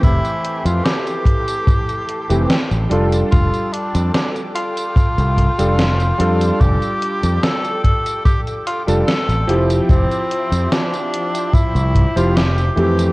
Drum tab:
HH |xxxxxxxxxxxxxxxx|xxxxxxxxxxxxxxxx|xxxxxxxxxxxxxxxx|xxxxxxxxxxxxxxxx|
TB |xx-xxx-xxx-xxx-x|xx-xxx-xxx-xxx-x|xx-xxx-xxx-xxx-x|xx-xxx-xxx-xxx-x|
SD |----o-------o---|----o-------o---|----o-------o---|----o-------o---|
BD |o-----o-o-------|o-------o-o-----|o-----o-o-------|o-------o-o-----|